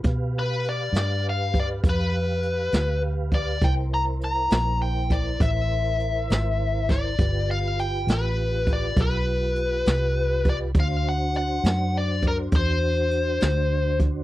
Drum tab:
HH |x-xx-xx-xx-x|x-xx-xx-xx-x|x-xx-xx-xx-x|x-xx-xx-xx-x|
SD |---o-----o--|---o-----o-o|---o-----o--|---o-----o--|
BD |o----oo----o|o----oo----o|o----oo----o|o----oo----o|